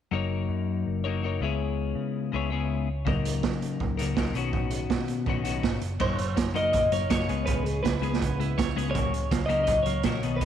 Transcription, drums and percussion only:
3.07 kick
3.25 closed hi-hat
3.43 kick, snare
3.62 closed hi-hat
3.80 kick
3.99 closed hi-hat
4.17 kick, snare
4.35 closed hi-hat
4.53 kick
4.71 closed hi-hat
4.90 kick, snare
5.08 closed hi-hat
5.26 kick
5.45 closed hi-hat
5.63 kick, snare
5.82 closed hi-hat
6.00 kick, crash
6.19 closed hi-hat
6.37 kick, snare, closed hi-hat
6.56 closed hi-hat
6.73 kick, closed hi-hat
6.92 closed hi-hat
7.10 kick, snare, closed hi-hat
7.29 closed hi-hat
7.47 kick, closed hi-hat
7.66 closed hi-hat
7.85 kick, snare, closed hi-hat
8.03 closed hi-hat
8.14 snare
8.22 kick, closed hi-hat
8.41 closed hi-hat
8.59 kick, snare, closed hi-hat
8.78 closed hi-hat
8.95 kick, closed hi-hat
9.14 closed hi-hat
9.31 kick, snare, closed hi-hat
9.50 closed hi-hat
9.67 kick, closed hi-hat
9.86 closed hi-hat
10.03 kick, snare, closed hi-hat
10.23 closed hi-hat
10.41 kick, closed hi-hat

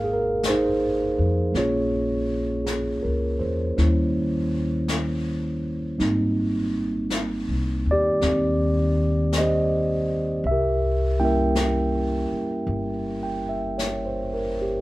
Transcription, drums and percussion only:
0.43 brush sweep, snare, hi-hat pedal
1.55 brush sweep, snare
2.66 brush sweep, snare, hi-hat pedal
3.78 brush sweep, snare
4.88 brush sweep, snare, hi-hat pedal
6.00 brush sweep, snare
7.10 brush sweep, snare, hi-hat pedal
8.21 brush sweep, snare
9.33 brush sweep, snare, hi-hat pedal
10.44 brush sweep
11.55 brush sweep, snare, hi-hat pedal
12.67 brush sweep
13.79 brush sweep, snare, hi-hat pedal

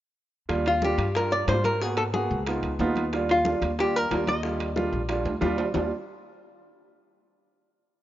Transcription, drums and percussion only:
0.49 high bongo, high conga, high timbale
0.66 high bongo, high conga, high timbale
0.82 high bongo, high conga, low timbale
0.98 high conga, high timbale
1.14 high bongo, high conga, high timbale
1.31 high conga
1.48 high bongo, low bongo, high conga, high timbale, low timbale
1.64 high bongo, high conga, high timbale
1.80 high bongo, high conga
1.97 high bongo, high conga, high timbale
2.14 high bongo, high conga, low timbale
2.30 high conga
2.46 high bongo, high conga, high timbale
2.63 high conga, high timbale
2.79 high bongo, low bongo, high conga, low timbale
2.96 high bongo, high conga, high timbale
3.13 high bongo, high conga, high timbale
3.29 high bongo, high conga, high timbale
3.45 high bongo, high conga, low timbale
3.62 high conga, high timbale
3.79 high bongo, high conga, high timbale
3.95 high conga
4.11 high bongo, low bongo, high conga, high timbale, low timbale
4.27 high bongo, high conga, high timbale
4.43 high bongo
4.60 high bongo, high conga, high timbale
4.76 high bongo, high conga, low timbale
4.93 high conga
5.09 high bongo, high conga, high timbale
5.26 high conga, high timbale
5.42 high bongo, low bongo, high conga, low timbale
5.58 high bongo, low timbale
5.74 low bongo, low conga, low timbale

